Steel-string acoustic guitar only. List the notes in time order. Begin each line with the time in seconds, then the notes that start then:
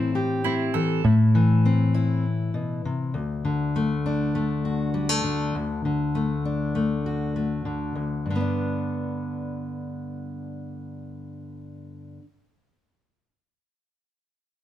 Already playing: A2 E3 C4 E4
0.15 G4
0.45 C4
0.74 E3
1.04 A2
1.35 E3
1.65 C4
1.94 E4
2.54 B2
2.85 C3
3.14 D2
3.45 D3
3.76 A3
4.06 D4
4.35 A3
4.65 F#4
4.94 G3
5.09 A3
5.24 D3
5.55 D2
5.85 D3
6.15 A3
6.45 D4
6.75 A3
7.06 F#4
7.36 A3
7.65 D3
7.95 D2
8.26 G2
8.30 D3
8.35 B3
8.41 D4